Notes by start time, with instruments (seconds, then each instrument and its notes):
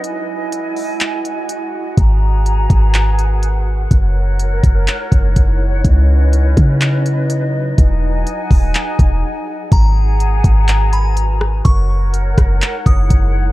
Already playing: flute section D#5
0.04 synth texture G#3 F#4 D#5, flute section E4 F#5 G#5, closed hi-hat
0.52 closed hi-hat
0.77 open hi-hat
1.01 clap, closed hi-hat
1.25 closed hi-hat
1.49 closed hi-hat
1.97 808-style bass G#1, flute section G#4 G#5 A#5, synth texture A#4 B4, kick, closed hi-hat
2.46 closed hi-hat
2.70 808-style bass G#1, kick, closed hi-hat
2.94 clap, closed hi-hat
3.19 closed hi-hat
3.43 closed hi-hat
3.91 808-style bass F#1, synth texture G#3 D#4 E4 A#4, flute section A#4 C#5, kick, closed hi-hat
4.39 closed hi-hat
4.63 808-style bass F#1, kick, closed hi-hat
4.88 clap, closed hi-hat
5.12 808-style bass F#1, kick, closed hi-hat
5.36 808-style bass F#1, kick, closed hi-hat
5.85 808-style bass C#2, synth texture F#3 B4, flute section C#4 B4 D#5, kick, closed hi-hat
6.33 closed hi-hat
6.57 808-style bass C#3, kick, closed hi-hat
6.81 clap, closed hi-hat
7.06 closed hi-hat
7.30 closed hi-hat
7.78 808-style bass E1, flute section D#4 F#5 G#5, synth texture G#4, kick, closed hi-hat
8.27 closed hi-hat
8.51 808-style bass D#1, kick, open hi-hat
8.75 clap, closed hi-hat
8.99 808-style bass E1, kick, closed hi-hat
9.71 808-style bass G#1, synth texture F#4 A#4 B4, flute section G#4 F#5 G#5 A#5, synth bell A#5, kick, closed hi-hat
10.20 closed hi-hat
10.44 808-style bass G#1, kick, closed hi-hat
10.68 clap, closed hi-hat
10.93 synth bell B5, closed hi-hat
11.17 closed hi-hat
11.41 cross-stick
11.65 808-style bass F#1, synth texture G#3 D#4 E4 A#4, flute section A#4 C#5 F#5, synth bell C#6, kick, closed hi-hat
12.14 closed hi-hat
12.38 808-style bass F#1, kick, cross-stick, closed hi-hat
12.62 clap, closed hi-hat
12.86 808-style bass F#1, synth bell D#6, kick, closed hi-hat
13.10 808-style bass F#1, kick, closed hi-hat